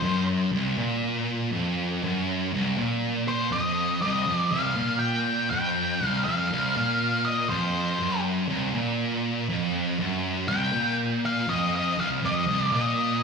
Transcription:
Already playing: C5
0.03 F#2
0.52 C2
0.77 A#2
1.52 F2
2.03 F#2
2.53 C2
2.78 A#2
3.28 C5
3.52 F2 D#5
4.02 C2 D#5
4.27 F2
4.37 D5
4.51 C2 F5
4.76 A#2
4.99 G5
5.50 F2 G5
6.01 C2
6.07 F5
6.24 F2 F5
6.52 C2
6.77 A#2
7.25 D#5
7.49 F2 C5
8.00 F#2
8.49 C2
8.74 A#2
9.49 F2
9.99 F#2
10.48 C2 G5
10.73 A#2
11.25 F5
11.47 F2 D#5
11.75 D#5
11.97 C2 F5
12.22 F2 D#5
12.47 C2
12.72 A#2 D#5

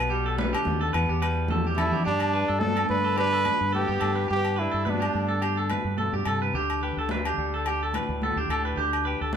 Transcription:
Already playing: B1 B2 B3
0.10 G3 G4
0.26 A4
0.38 D3 B4, high conga
0.53 G4, low agogo
0.65 D#2 B3, high conga
0.81 A4
0.93 E2 B3 B4, muted conga, low agogo
1.09 G4
1.21 G3 B4, muted conga, low agogo
1.48 E3 A4, high conga, low conga
1.64 G4, high conga
1.76 G3 B3 E4 A4, low conga, low agogo
1.92 G4, low conga
2.05 G2 G3 D4 G4, muted conga
2.20 low agogo
2.33 D4 B4, muted conga
2.48 G2 A4
2.60 B3 D4 A4, high conga
2.76 A4, low agogo
2.89 G2 D3 D4 B4, muted conga
3.05 A4
3.17 D4 G4 B4, muted conga, low agogo
3.32 A4
3.45 G2 B4, high conga, low agogo
3.61 G2
3.72 B3 G4 A4, high conga
3.77 B3
3.87 G2 G4
4.00 G2 D4 A4, low agogo
4.15 B4
4.28 G2 G4, muted clean electric guitar stroke, muted conga
4.35 B3
4.45 low agogo
4.56 D4 E4 B4, muted conga
4.61 G3
4.71 G2 A4
4.85 B3 B4, high conga
4.89 G3 D4
5.00 G4, low agogo
5.14 G2 D3, muted conga
5.28 A4
5.42 D4 G4, muted conga, low agogo
5.57 A4
5.70 G2 B4, high conga, low agogo
5.85 G2
5.97 B2 A4, high conga
6.13 G2 G4
6.25 G2 C3 A4, low agogo
6.42 B4
6.54 D2 D3 G4, muted conga
6.70 low agogo
6.82 G4 B4, muted conga
6.97 D2 A4
7.09 D4 B4, high conga
7.25 G4, low agogo
7.37 D2 G3
7.54 A4
7.66 G4, muted conga, low agogo
7.83 A4
7.93 A2 B4, high conga, low agogo
8.09 D2
8.22 B3 A4, high conga
8.36 D2 D4 G4
8.49 D2 G4 A4, low agogo
8.65 B4
8.77 D2 D3 G4, muted conga
8.93 low agogo
9.05 G4 B4, muted conga
9.21 D2 A4
9.33 high conga

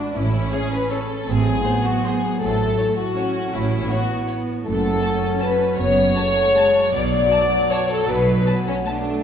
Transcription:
Already playing: A2 G#3 D4 G#4 B4
0.00 D4
0.14 A1 A2 C#4 E4
0.33 A3
0.51 G#4 C#5
0.72 B4 C#5
0.91 A4 C#5
1.10 C#5
1.27 A1 A2 C4 G#4
1.46 F#3
1.64 B3 D#4 C5
1.84 F#4 C5
2.04 F#4 G#4 C5
2.23 C5
2.40 A1 A2 A3 A4
2.59 A3
2.78 E4 C#5
2.96 F#4 C#5
3.17 C#4 A4 C#5
3.37 C#5
3.54 A1 A2 E4
3.72 A3
3.90 B3 E4 F#4 C#5
4.11 C#5
4.29 C#5
4.48 C#5
4.66 F#1 F#2 A3 A4
4.84 A3
5.02 C#4 F#4 A5
5.22 C#5
5.41 A4 B4 A5
5.61 C#5
5.79 F#1 F#2 B3 C#5
5.97 A3
6.16 A3 F#4 A5
6.37 C#5
6.56 G#3 A4 A5
6.75 C#5
6.93 B1 B2 F#3 D5
7.12 A3
7.31 F#4 A5
7.51 B4
7.71 A4 C#5 A5
7.90 A4 B4
8.08 B1 B2 B4
8.28 A3
8.46 F#4 A5
8.67 C#4 B4
8.86 A3 D4 A4 A5
9.06 B4

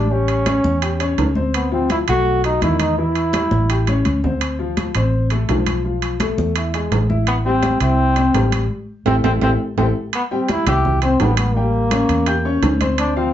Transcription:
Already playing: A1 D4
0.10 G3 C#4 G4, high conga
0.28 high conga, high timbale
0.46 C#4 C#5, high conga, high timbale
0.64 E2, high conga
0.82 G4 G5, high timbale
1.00 C#4 C#5, high conga, high timbale
1.18 D2, high conga, high timbale, low timbale
1.35 C4 C5, high conga
1.54 B3, high conga, high timbale
1.71 F3 C4 F4, high conga
1.90 E4, high conga, high timbale
2.08 B1 A3 F#4 A4, high conga, high timbale
2.26 high conga
2.44 F#3 D#4 F#4, high conga, high timbale
2.61 E2 D#3 D#4 E4, high conga, high timbale
2.79 D#4, high conga, high timbale
2.97 E3 E4, high conga
3.15 high conga, high timbale
3.33 G3 G4, high conga, high timbale
3.51 A1, high conga
3.70 G4 G5, high conga, high timbale
3.87 C#4 C#5, high conga, high timbale
4.05 D2, high conga, high timbale
4.23 C4 C5, low conga
4.41 high conga, high timbale
4.59 F3 F4, high conga
4.77 high conga, high timbale
4.95 A1 C4 C5, high conga, high timbale
5.13 high conga
5.30 A3 A4, high conga, high timbale
5.49 B1 F3 F4, high conga, high timbale, low timbale
5.66 high conga, high timbale
5.85 F3 F4, high conga
6.02 high conga, high timbale
6.20 A3 A4, high conga, high timbale
6.37 E2, high conga
6.56 E4 E5, high conga, high timbale
6.74 G#3 G#4, high conga, high timbale
6.91 A1, high conga, high timbale, low timbale
7.09 E4 E5, high conga
7.27 B3, high conga, high timbale
7.45 G3 C4 G4, high conga
7.63 high conga, high timbale
7.80 C2 C4 E4 E5, high conga, high timbale
7.98 high conga
8.16 C4 C5, high conga, high timbale
8.34 A1 G3 G4, high conga, high timbale, low timbale
8.52 high conga, high timbale
9.05 A1 C4 E4 G4 A4, high conga, high timbale
9.23 A1 C4 E4 G4 A4, high conga, high timbale
9.41 A1 C4 E4 G4 A4, high conga, high timbale
9.77 A1 C4 E4 G4 A4, high conga, high timbale
10.13 B3, high conga, high timbale
10.31 G3 C4 G4 G5, high conga
10.48 E4, high conga, high timbale
10.66 C2 E4 G4 E5 E6, high conga, low conga, high timbale
10.85 high conga, low conga
11.02 C4 C5 C6, high conga, high timbale
11.20 A1 G3 B3 G4 G5, high conga, high timbale, low timbale
11.37 B3, high conga, high timbale
11.54 G3 A#3 G4 G5, high conga
11.73 high conga
11.91 C#4 C#5 C#6, high conga, high timbale
12.09 E2, high timbale
12.26 G4 G5 G6, high conga, high timbale
12.45 C#4 C#5 C#6, high conga
12.62 D2, high conga, high timbale, low timbale
12.80 C4 C5 C6, high conga, high timbale
12.98 D4, high conga, high timbale
13.16 F3 C4 F4 F5, high conga

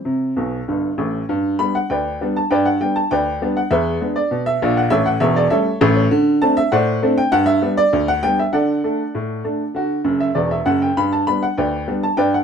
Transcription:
Already playing: C5
0.05 C3
0.37 B1 B2
0.68 G1 G2
0.98 A1 A2
1.29 G2
1.59 G3 B3 D4 B5
1.75 F#5
1.90 D2 B4 D5 G5
2.21 G3 B3 D4
2.36 A5
2.51 G2 B4 D5 G5
2.66 F#5
2.81 G3 B3 D4 G5
2.96 A5
3.11 D2 B4 D5 G5
3.42 G3 B3 D4
3.57 F#5
3.71 E2 G#4 B4 E5
4.01 G#3 B3 D4
4.16 D5
4.31 B2
4.46 E5
4.62 A#1 A#2
4.77 F#5
4.90 A1 A2 A4 C#5 E5
5.06 F#5
5.20 E1 E2 E5
5.36 D5
5.50 G3 A3 C#4 A4 C#5 E5
5.81 A1 A2
5.96 C#5
6.11 D3
6.42 A3 C4 D4 A5
6.57 E5
6.72 A2 C5 D5 F#5
7.02 A3 C4 D4
7.18 G5
7.32 G2 F#5
7.46 E5
7.62 G3 B3 D4
7.77 D5
7.93 D2
8.08 F#5
8.23 G3 B3 D4 G5
8.39 E5
8.53 D3 A4 D5 F#5
8.84 A3 D4
9.15 A2
9.44 A3 D4
9.74 D3 F#4
10.04 F#1 F#2
10.20 E5
10.35 E1 E2 D5
10.51 E5
10.66 F#1 F#2 F#5
10.82 G5
10.97 G2 B5
11.12 A5
11.27 G3 B3 D4 B5
11.43 F#5
11.58 D2 B4 D5 G5
11.88 G3 B3 D4
12.03 A5
12.17 G2 B4 D5 G5
12.34 F#5

